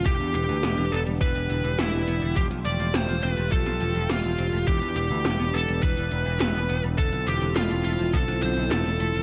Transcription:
Already playing: analog synth pad D3
0.06 clean electric guitar E3, analog synth pad B3 D4 G4, lead electric guitar G4, kick, closed hi-hat
0.20 picked electric bass E2, clean electric guitar E3, closed hi-hat
0.34 picked electric bass E1, clean electric guitar E3, lead electric guitar G4, closed hi-hat
0.49 picked electric bass D2, clean electric guitar E3, closed hi-hat
0.63 picked electric bass E1, clean electric guitar B3, snare, closed hi-hat
0.78 picked electric bass E1, clean electric guitar E3, closed hi-hat
0.92 picked electric bass E1, clean electric guitar B3, lead electric guitar A4
1.06 picked electric bass E1, clean electric guitar G3, closed hi-hat
1.21 clean electric guitar E3, lead electric guitar B4, kick, closed hi-hat
1.35 picked electric bass E1, clean electric guitar E3, closed hi-hat
1.50 picked electric bass E1, clean electric guitar E3, closed hi-hat
1.64 picked electric bass E1, clean electric guitar E3, closed hi-hat
1.78 picked electric bass E1, clean electric guitar B3, lead electric guitar E4, snare, closed hi-hat
1.93 picked electric bass E1, clean electric guitar E3, closed hi-hat
2.07 picked electric bass E1, clean electric guitar B3, closed hi-hat
2.22 picked electric bass E1, clean electric guitar G3, closed hi-hat
2.36 clean electric guitar F3, analog synth pad A3 F4, lead electric guitar G4, kick, closed hi-hat
2.51 picked electric bass B1, clean electric guitar F3, closed hi-hat
2.65 picked electric bass E1, clean electric guitar F3, lead electric guitar D5, closed hi-hat
2.80 picked electric bass E1, clean electric guitar F3, closed hi-hat
2.94 picked electric bass E1, clean electric guitar C4, lead electric guitar C5, snare, closed hi-hat
3.08 picked electric bass E1, clean electric guitar F3, closed hi-hat
3.23 picked electric bass E1, clean electric guitar C4, lead electric guitar B4
3.37 picked electric bass E1, clean electric guitar A3, closed hi-hat
3.52 clean electric guitar F3, lead electric guitar A4, kick, closed hi-hat
3.66 picked electric bass B1, clean electric guitar F3, snare, closed hi-hat
3.81 picked electric bass E1, clean electric guitar F3, closed hi-hat
3.95 picked electric bass E1, clean electric guitar F3, closed hi-hat
4.09 picked electric bass E1, clean electric guitar C4, lead electric guitar F4, snare, closed hi-hat
4.24 picked electric bass E1, clean electric guitar F3, closed hi-hat
4.38 picked electric bass E1, clean electric guitar C4, closed hi-hat
4.53 picked electric bass E1, clean electric guitar A3, closed hi-hat
4.67 picked electric bass E1, clean electric guitar E3, analog synth pad B3 D4 E4, lead electric guitar G4, kick, closed hi-hat
4.81 picked electric bass E2, clean electric guitar E3, closed hi-hat
4.96 picked electric bass E1, clean electric guitar E3, lead electric guitar G4, closed hi-hat
5.11 picked electric bass D2, clean electric guitar E3, closed hi-hat
5.25 picked electric bass E1, clean electric guitar B3, snare, closed hi-hat
5.39 picked electric bass E1, clean electric guitar B3, closed hi-hat
5.54 picked electric bass E1, clean electric guitar B3, lead electric guitar A4
5.68 picked electric bass E1, clean electric guitar G3, closed hi-hat
5.83 clean electric guitar E3, lead electric guitar B4, kick, closed hi-hat
5.97 picked electric bass E1, clean electric guitar E3, closed hi-hat
6.11 picked electric bass E1, clean electric guitar E3, closed hi-hat
6.26 picked electric bass E1, clean electric guitar E3, closed hi-hat
6.40 picked electric bass E1, clean electric guitar B3, lead electric guitar B4, snare, closed hi-hat
6.55 picked electric bass E1, clean electric guitar B3, closed hi-hat
6.69 picked electric bass E1, clean electric guitar B3, closed hi-hat
6.84 picked electric bass E1, clean electric guitar G3, closed hi-hat
6.98 clean electric guitar D3, analog synth pad C4 F4 A4, lead electric guitar A4, kick, closed hi-hat
7.13 picked electric bass B1, clean electric guitar D3, closed hi-hat
7.27 picked electric bass E1, clean electric guitar D3, lead electric guitar G4, closed hi-hat
7.41 picked electric bass E1, clean electric guitar D3, closed hi-hat
7.55 picked electric bass E1, clean electric guitar A3, lead electric guitar F4, snare, closed hi-hat
7.70 picked electric bass E1, clean electric guitar A3, closed hi-hat
7.84 picked electric bass E1, clean electric guitar A3, lead electric guitar F4
7.99 picked electric bass E1, clean electric guitar F3, closed hi-hat
8.13 picked electric bass B1, clean electric guitar D3, lead electric guitar A4, kick, closed hi-hat
8.28 picked electric bass B1, clean electric guitar D3, snare, closed hi-hat
8.42 picked electric bass B1, clean electric guitar D3, lead electric guitar C5, closed hi-hat
8.57 picked electric bass B1, clean electric guitar D3, closed hi-hat
8.71 picked electric bass E1, clean electric guitar A3, lead electric guitar A4, snare, closed hi-hat
8.86 picked electric bass E1, clean electric guitar A3, closed hi-hat
9.00 picked electric bass E1, clean electric guitar A3, closed hi-hat
9.14 picked electric bass E1, clean electric guitar F3, closed hi-hat

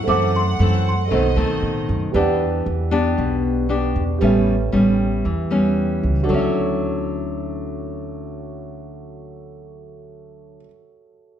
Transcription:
0.04 nylon-string guitar F#2 E3, upright bass F#2, grand piano A4 C5, violin section F#5
0.08 nylon-string guitar A3 C4, grand piano E5 F#5, celesta D6
0.36 celesta C6
0.59 upright bass F#2, nylon-string guitar E3 A3 C4
0.89 celesta C6
1.08 upright bass B1, nylon-string guitar B2 D#3 A3 C4, grand piano A4 C5 D#5, violin section D#5
1.14 grand piano F#5
1.36 upright bass B2, nylon-string guitar D#3 A3 C4
1.62 upright bass A2
1.89 upright bass F#2
2.12 upright bass E2, nylon-string guitar E3 B3 D4 G4, grand piano G4 B4 D5
2.18 grand piano F#5
2.66 upright bass E2
2.91 nylon-string guitar B3 D4 G4
3.18 upright bass B1, nylon-string guitar B2
3.69 nylon-string guitar B3 D4 G4
3.96 upright bass E2
4.18 upright bass A1, nylon-string guitar A2 G3 B3 C#4, grand piano G4 B4 C#5
4.24 grand piano E5
4.72 upright bass A1, nylon-string guitar G3 B3 C#4
5.25 upright bass E2, nylon-string guitar E3
5.51 nylon-string guitar G3 B3 C#4
6.03 upright bass C#2
6.23 nylon-string guitar D3, grand piano F#4
6.27 upright bass D2, nylon-string guitar F#3, grand piano A4
6.31 nylon-string guitar C#4, grand piano C#5 E5
6.38 nylon-string guitar E4

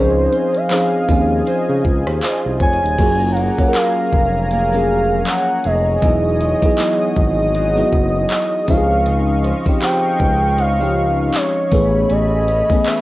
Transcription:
Already playing: analog synth bass C#2, fm electric piano F3 C4 C#4 D#4 G#4, steel-string acoustic guitar G#3 C#4, analog synth pad G#4 D#5 F5 G#5, soft synth lead C5
0.32 steel-string acoustic guitar C5, closed hi-hat
0.54 soft synth lead F5, closed hi-hat
0.70 fm electric piano F3 C4 C#4 D#4 G#4, clap, closed hi-hat
1.08 analog synth bass D#2, fm electric piano F3 C4 C#4 D#4 G#4, steel-string acoustic guitar F4, kick
1.47 steel-string acoustic guitar F4 C5 D#5, closed hi-hat
1.69 analog synth bass C#3
1.85 analog synth bass C#2, kick
2.07 analog synth bass D#2, cross-stick
2.23 steel-string acoustic guitar F4 C5 D#5, clap, closed hi-hat
2.45 analog synth bass C2
2.60 analog synth bass F1, steel-string acoustic guitar C#5, soft synth lead G#5, kick, closed hi-hat
2.73 closed hi-hat
2.83 analog synth bass D#1, steel-string acoustic guitar D#5, closed hi-hat
2.98 analog synth bass F#1, fm electric piano F#3 A#3 C#4 F4 G#4, steel-string acoustic guitar F#3, analog synth pad G#4 C#5 G#5 A#5, kick, closed hi-hat, crash
3.32 soft synth lead F5
3.37 steel-string acoustic guitar A#3, soft synth lead F#5, closed hi-hat
3.58 fm electric piano F#3 A#3 C#4 F4 G#4, kick
3.68 fm electric piano A#4
3.74 steel-string acoustic guitar A#3 F4 G#4, soft synth lead F5, clap, closed hi-hat
4.13 analog synth bass F1, kick
4.51 steel-string acoustic guitar A#3 G#4, soft synth lead F5, closed hi-hat
4.72 fm electric piano F3 F#3 A#3 C#4 G#4
5.26 soft synth lead F#5, clap, closed hi-hat
5.64 analog synth bass F1, steel-string acoustic guitar G#4, soft synth lead D#5, closed hi-hat
6.02 analog synth bass E1, steel-string acoustic guitar E3, fm electric piano F#3 B3 D#4 E4 G#4, analog synth pad D#5 D#6, kick, closed hi-hat
6.40 steel-string acoustic guitar G#3, closed hi-hat
6.62 fm electric piano F#3 B3 D#4 E4 G#4, kick
6.78 steel-string acoustic guitar G#3 D#4 F#4, clap, closed hi-hat
7.16 analog synth bass G#1, soft synth lead D#5, kick
7.54 steel-string acoustic guitar G#3 D#4 F#4, closed hi-hat
7.76 fm electric piano F#3 B3 D#4 E4 F#4
7.92 analog synth bass F#1, kick
8.30 clap, closed hi-hat
8.67 analog synth bass C#2, steel-string acoustic guitar C#3, fm electric piano F3 C4 C#4 D#4 G4, analog synth pad D#5 F5 C#6, soft synth lead F5, kick, closed hi-hat
8.78 fm electric piano G#4
9.06 steel-string acoustic guitar C#3, closed hi-hat
9.44 steel-string acoustic guitar F3, closed hi-hat
9.65 fm electric piano F3 C4 C#4 D#4 G4, kick
9.82 steel-string acoustic guitar F3 C4 D#4, soft synth lead G5, clap, closed hi-hat
10.20 analog synth bass C#2, kick
10.58 steel-string acoustic guitar F3 D#4, soft synth lead F5, closed hi-hat
10.79 fm electric piano F3 G#3 C#4 D#4 G4
11.34 soft synth lead C#5, clap, closed hi-hat
11.71 analog synth bass A1, fm electric piano E3 A3 B3 C#4 G#4, analog synth pad A3 C#5 G#5 B5, steel-string acoustic guitar A3, kick, closed hi-hat
12.09 analog synth bass A1, steel-string acoustic guitar A3, soft synth lead D#5, closed hi-hat
12.48 steel-string acoustic guitar C#4, closed hi-hat
12.69 fm electric piano E3 A3 B3 C#4 G#4, kick
12.85 steel-string acoustic guitar C#4 G#4 B4, soft synth lead E5, clap, closed hi-hat

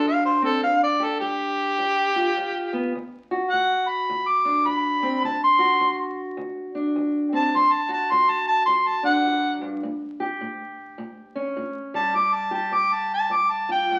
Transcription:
Already playing: steel-string acoustic guitar D3 D4 F#4
0.04 steel-string acoustic guitar D2, harmonica F5
0.25 harmonica C5
0.42 steel-string acoustic guitar C4, harmonica A4
0.63 steel-string acoustic guitar G2, harmonica F5
0.83 harmonica D5
1.00 steel-string acoustic guitar G4
1.04 harmonica A4
1.20 steel-string acoustic guitar G2, harmonica G4
1.78 steel-string acoustic guitar G2
2.16 steel-string acoustic guitar F4
2.37 steel-string acoustic guitar G2
2.73 steel-string acoustic guitar B3
2.95 steel-string acoustic guitar D2
3.31 steel-string acoustic guitar F#4
3.50 steel-string acoustic guitar D2, harmonica F#5
3.89 harmonica B5
4.09 steel-string acoustic guitar D2
4.28 harmonica D6
4.45 steel-string acoustic guitar D4
4.66 steel-string acoustic guitar D2, harmonica B5
5.03 steel-string acoustic guitar C4
5.23 steel-string acoustic guitar D2, harmonica A5
5.44 harmonica C6
5.59 steel-string acoustic guitar F#4
5.80 steel-string acoustic guitar D2
6.37 steel-string acoustic guitar D2
6.75 steel-string acoustic guitar D4
6.96 steel-string acoustic guitar D2
7.33 steel-string acoustic guitar C4, harmonica A5
7.54 steel-string acoustic guitar D2, harmonica C6
7.73 harmonica A5
7.89 steel-string acoustic guitar F#4
7.93 harmonica A5
8.11 steel-string acoustic guitar D2, harmonica C6
8.30 harmonica A5
8.48 harmonica A5
8.66 steel-string acoustic guitar D2, harmonica C6
8.88 harmonica A5
9.03 steel-string acoustic guitar D4, harmonica F#5
9.25 steel-string acoustic guitar F#2
9.61 steel-string acoustic guitar G2
9.83 steel-string acoustic guitar A2
10.20 steel-string acoustic guitar G4
10.41 steel-string acoustic guitar A2
10.98 steel-string acoustic guitar A2
11.35 steel-string acoustic guitar C#4
11.57 steel-string acoustic guitar A2
11.94 steel-string acoustic guitar G3, harmonica A5
12.14 steel-string acoustic guitar G2, harmonica D6
12.35 harmonica A5
12.51 steel-string acoustic guitar G4, harmonica A5
12.71 steel-string acoustic guitar G2, harmonica D6
12.93 harmonica A5
13.14 harmonica A5
13.30 steel-string acoustic guitar G2, harmonica D6
13.51 harmonica A5
13.69 steel-string acoustic guitar F4, harmonica G5
13.91 steel-string acoustic guitar G2

